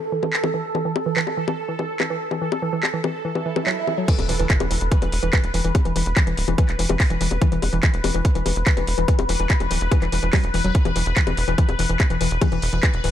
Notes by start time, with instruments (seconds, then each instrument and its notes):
Already playing: synth texture A4, downlifter
0.12 synth arpeggio sound E3
0.23 synth arpeggio sound E3, high bongo
0.33 clap
0.44 synth arpeggio sound E3, high bongo
0.54 synth arpeggio sound E3
0.75 synth arpeggio sound E3, high bongo
0.85 synth arpeggio sound E3
0.96 high bongo
1.06 synth arpeggio sound E3
1.17 synth arpeggio sound E3, clap
1.27 high bongo
1.37 synth arpeggio sound E3
1.48 synth arpeggio sound E3, high bongo
1.69 synth arpeggio sound E3
1.79 synth arpeggio sound E3, high bongo
2.00 synth arpeggio sound E3, clap, high bongo
2.10 synth arpeggio sound E3
2.31 synth arpeggio sound E3, high bongo
2.42 synth arpeggio sound E3
2.52 high bongo
2.62 synth arpeggio sound E3
2.73 synth arpeggio sound E3
2.83 clap, high bongo
2.94 synth arpeggio sound E3
3.04 synth arpeggio sound E3, high bongo
3.25 synth arpeggio sound E3, swell
3.35 synth arpeggio sound E3, high bongo
3.46 synth arpeggio sound E3
3.56 synth arpeggio sound E3, high bongo
3.67 synth arpeggio sound F#3, clap
3.87 synth arpeggio sound E3, high bongo
3.98 synth arpeggio sound F#3
4.08 synth arpeggio sound E3, synth texture B4, kick, closed hi-hat, crash, impact
4.19 analog synth bass E1, closed hi-hat, high bongo
4.29 analog synth bass E1, synth arpeggio sound E3, open hi-hat
4.39 analog synth bass E1, synth arpeggio sound E3, closed hi-hat
4.50 kick, clap, closed hi-hat
4.60 analog synth bass E1, synth arpeggio sound E3, closed hi-hat, high bongo
4.71 analog synth bass E1, synth arpeggio sound E3, open hi-hat
4.81 analog synth bass E1, closed hi-hat
4.92 synth arpeggio sound E3, kick, closed hi-hat
5.02 analog synth bass E1, synth arpeggio sound E3, closed hi-hat, high bongo
5.12 analog synth bass E1, open hi-hat
5.23 analog synth bass E1, synth arpeggio sound E3, closed hi-hat
5.33 synth arpeggio sound E3, kick, clap, closed hi-hat, high bongo
5.44 analog synth bass E1, closed hi-hat
5.54 analog synth bass E1, synth arpeggio sound E3, open hi-hat
5.64 analog synth bass E1, synth arpeggio sound E3, closed hi-hat
5.75 kick, closed hi-hat, high bongo
5.85 analog synth bass E1, synth arpeggio sound E3, closed hi-hat
5.96 analog synth bass E1, synth arpeggio sound E3, open hi-hat
6.06 analog synth bass E1, closed hi-hat
6.17 synth arpeggio sound E3, kick, clap, closed hi-hat, high bongo
6.27 analog synth bass E1, synth arpeggio sound E3, closed hi-hat
6.37 analog synth bass D1, open hi-hat
6.48 analog synth bass E1, synth arpeggio sound E3, closed hi-hat, high bongo
6.58 synth arpeggio sound E3, kick, closed hi-hat
6.69 analog synth bass E1, clap, closed hi-hat
6.79 analog synth bass E1, synth arpeggio sound E3, open hi-hat
6.89 analog synth bass E1, synth arpeggio sound E3, closed hi-hat, high bongo
7.00 kick, clap, open hi-hat
7.10 analog synth bass E1, synth arpeggio sound E3, closed hi-hat
7.21 analog synth bass E1, synth arpeggio sound E3, open hi-hat
7.31 analog synth bass E1, closed hi-hat, high bongo
7.42 synth arpeggio sound E3, kick, closed hi-hat
7.52 analog synth bass E1, synth arpeggio sound E3, closed hi-hat
7.62 analog synth bass E1, open hi-hat, high bongo
7.73 analog synth bass E1, synth arpeggio sound E3, closed hi-hat
7.83 synth arpeggio sound E3, kick, clap, closed hi-hat
7.94 analog synth bass E1, closed hi-hat
8.04 analog synth bass E1, synth arpeggio sound E3, open hi-hat, high bongo
8.14 analog synth bass E1, synth arpeggio sound E3, closed hi-hat
8.25 kick, closed hi-hat
8.35 analog synth bass E1, synth arpeggio sound E3, closed hi-hat
8.46 analog synth bass E1, synth arpeggio sound E3, open hi-hat, high bongo
8.56 analog synth bass E1, closed hi-hat
8.67 synth arpeggio sound E3, kick, clap, closed hi-hat
8.77 analog synth bass E1, synth arpeggio sound E3, closed hi-hat, high bongo
8.87 analog synth bass E1, open hi-hat
8.98 analog synth bass E1, synth arpeggio sound E3, closed hi-hat
9.08 synth arpeggio sound E3, kick, closed hi-hat
9.19 analog synth bass E1, closed hi-hat, high bongo
9.29 analog synth bass E1, synth arpeggio sound E3, open hi-hat
9.39 analog synth bass E1, synth arpeggio sound E3, closed hi-hat
9.50 kick, clap, closed hi-hat
9.60 analog synth bass E1, synth arpeggio sound E3, closed hi-hat, high bongo
9.71 analog synth bass D1, synth arpeggio sound E3, open hi-hat
9.81 analog synth bass E1, closed hi-hat
9.92 synth arpeggio sound E3, kick, closed hi-hat, high bongo
10.02 analog synth bass E1, synth arpeggio sound E3, clap, closed hi-hat
10.12 analog synth bass E1, synth arpeggio sound E3, open hi-hat
10.23 analog synth bass E1, synth arpeggio sound E3, closed hi-hat
10.33 synth arpeggio sound F#3, kick, clap, open hi-hat, high bongo
10.44 analog synth bass E1, closed hi-hat
10.54 analog synth bass E1, synth arpeggio sound E3, open hi-hat
10.64 analog synth bass E1, synth arpeggio sound F#3, closed hi-hat
10.75 kick, closed hi-hat
10.85 analog synth bass E1, synth arpeggio sound E3, closed hi-hat, high bongo
10.96 analog synth bass E1, synth arpeggio sound E3, open hi-hat
11.06 analog synth bass E1, closed hi-hat
11.17 synth arpeggio sound E3, kick, clap, closed hi-hat
11.27 analog synth bass E1, synth arpeggio sound E3, closed hi-hat, high bongo
11.37 analog synth bass E1, open hi-hat
11.48 analog synth bass E1, synth arpeggio sound E3, closed hi-hat
11.58 synth arpeggio sound E3, kick, closed hi-hat
11.69 analog synth bass E1, closed hi-hat, high bongo
11.79 analog synth bass E1, synth arpeggio sound E3, open hi-hat
11.89 analog synth bass E1, synth arpeggio sound E3, closed hi-hat
12.00 kick, clap, closed hi-hat, high bongo
12.10 analog synth bass E1, synth arpeggio sound E3, closed hi-hat
12.21 analog synth bass E1, synth arpeggio sound E3, open hi-hat
12.31 analog synth bass E1, closed hi-hat
12.42 synth arpeggio sound E3, kick, closed hi-hat, high bongo
12.52 analog synth bass E1, synth arpeggio sound E3, closed hi-hat
12.62 analog synth bass E1, open hi-hat
12.73 analog synth bass E1, synth arpeggio sound E3, closed hi-hat
12.83 synth arpeggio sound E3, kick, clap, closed hi-hat, high bongo
12.94 analog synth bass E1, closed hi-hat
13.04 analog synth bass D1, synth arpeggio sound E3, open hi-hat